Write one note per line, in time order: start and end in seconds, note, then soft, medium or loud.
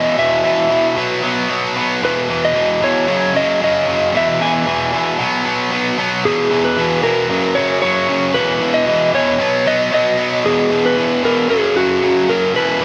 0.00 0.16 E2 loud
0.00 0.17 B2 medium
0.00 0.17 E3 loud
0.00 0.18 D#5 loud
0.17 0.42 E2 medium
0.17 0.43 B2 medium
0.17 0.43 E3 loud
0.17 0.93 E5 loud
0.43 0.68 E2 medium
0.43 0.68 B2 loud
0.43 0.69 E3 loud
0.69 0.95 E2 medium
0.69 0.95 B2 loud
0.69 0.95 E3 loud
0.96 1.21 B2 medium
0.96 1.22 F#3 loud
0.96 1.22 B3 loud
1.22 1.48 B2 medium
1.22 1.49 F#3 medium
1.22 1.49 B3 medium
1.49 1.75 B2 loud
1.49 1.75 F#3 medium
1.49 1.76 B3 medium
1.76 2.01 B2 medium
1.76 2.01 F#3 medium
1.76 2.01 B3 medium
2.02 2.27 E2 medium
2.02 2.28 B2 loud
2.02 2.29 E3 loud
2.02 2.44 B4 medium
2.29 2.53 E2 medium
2.29 2.54 B2 medium
2.29 2.55 E3 medium
2.45 2.84 D#5 loud
2.55 2.80 E2 loud
2.55 2.81 B2 loud
2.55 2.81 E3 loud
2.81 3.06 E2 medium
2.81 3.07 B2 medium
2.81 3.07 E3 loud
2.81 3.37 C#5 loud
3.07 3.33 F#2 loud
3.07 3.34 C#3 loud
3.07 3.35 F#3 loud
3.34 3.60 F#2 medium
3.34 3.60 C#3 medium
3.34 3.61 F#3 medium
3.34 3.63 D#5 loud
3.61 3.86 F#2 loud
3.61 3.87 C#3 loud
3.61 3.87 F#3 loud
3.61 4.16 D#5 medium
3.87 4.12 F#2 medium
3.87 4.12 C#3 loud
3.87 4.13 F#3 loud
4.13 4.39 E2 medium
4.13 4.40 B2 loud
4.13 4.41 E3 loud
4.13 4.42 E5 loud
4.40 4.64 E2 medium
4.40 4.65 B2 medium
4.40 4.66 E3 loud
4.40 5.16 G#5 loud
4.66 4.91 E2 loud
4.66 4.92 B2 loud
4.66 4.92 E3 loud
4.92 5.17 E2 medium
4.92 5.17 B2 medium
4.92 5.18 E3 medium
5.18 5.44 B2 loud
5.18 5.44 F#3 loud
5.18 5.45 B3 loud
5.45 5.71 B2 medium
5.45 5.71 F#3 medium
5.45 5.71 B3 medium
5.72 5.97 B2 medium
5.72 5.97 F#3 loud
5.72 5.98 B3 medium
5.98 6.23 B2 medium
5.98 6.23 F#3 medium
5.98 6.23 B3 medium
6.25 6.49 E2 medium
6.25 6.50 B2 loud
6.25 6.50 E3 loud
6.25 6.65 G#4 medium
6.50 6.76 E2 medium
6.50 6.76 B2 medium
6.50 6.77 E3 medium
6.65 7.03 B4 medium
6.77 7.01 E2 medium
6.77 7.02 B2 loud
6.77 7.03 E3 loud
7.02 7.28 E2 medium
7.02 7.28 B2 medium
7.02 7.28 E3 loud
7.02 7.58 A#4 loud
7.29 7.55 F#2 medium
7.29 7.55 C#3 loud
7.29 7.56 F#3 loud
7.55 7.81 F#2 medium
7.55 7.82 C#3 medium
7.55 7.83 F#3 loud
7.55 7.81 C#5 loud
7.82 8.06 F#2 loud
7.82 8.07 C#3 loud
7.82 8.08 F#3 loud
7.82 8.31 C#5 loud
8.08 8.33 F#2 medium
8.08 8.33 C#3 medium
8.08 8.33 F#3 medium
8.34 8.60 E2 medium
8.34 8.60 B2 medium
8.34 8.61 E3 loud
8.34 8.75 B4 loud
8.61 8.84 E2 loud
8.61 8.85 B2 medium
8.61 8.86 E3 loud
8.74 9.11 D#5 loud
8.86 9.12 E2 loud
8.86 9.13 B2 medium
8.86 9.14 E3 loud
9.14 9.38 E2 medium
9.14 9.38 B2 medium
9.14 9.39 E3 medium
9.14 9.68 C#5 loud
9.39 9.65 B2 loud
9.39 9.65 F#3 loud
9.39 9.65 B3 loud
9.66 9.90 B2 medium
9.66 9.91 F#3 medium
9.66 9.91 B3 loud
9.66 9.93 D#5 loud
9.91 10.16 B2 loud
9.91 10.17 F#3 loud
9.91 10.18 B3 loud
9.91 10.47 D#5 loud
10.18 10.43 B2 medium
10.18 10.43 F#3 loud
10.18 10.43 B3 loud
10.44 10.69 E2 loud
10.44 10.69 B2 loud
10.44 10.70 E3 loud
10.44 10.86 G#4 loud
10.70 10.95 E2 medium
10.70 10.95 B2 medium
10.70 10.97 E3 loud
10.86 11.25 B4 loud
10.96 11.22 E2 medium
10.96 11.23 B2 medium
10.96 11.23 E3 loud
11.23 11.48 E2 medium
11.23 11.49 B2 medium
11.23 11.49 E3 medium
11.23 11.49 A#4 medium
11.49 11.75 F#2 loud
11.49 11.76 C#3 loud
11.49 11.76 F#3 loud
11.49 11.77 G#4 loud
11.76 12.01 F#2 medium
11.76 12.02 C#3 medium
11.76 12.03 F#3 loud
11.76 12.31 F#4 loud
12.03 12.27 F#2 loud
12.03 12.28 C#3 loud
12.03 12.29 F#3 loud
12.29 12.54 F#2 medium
12.29 12.54 C#3 loud
12.29 12.54 F#3 loud
12.29 12.56 A#4 medium
12.54 12.79 E2 medium
12.54 12.79 B2 loud
12.54 12.80 E3 loud
12.54 12.85 B4 loud
12.80 12.85 E2 medium
12.80 12.85 B2 medium
12.80 12.85 E3 medium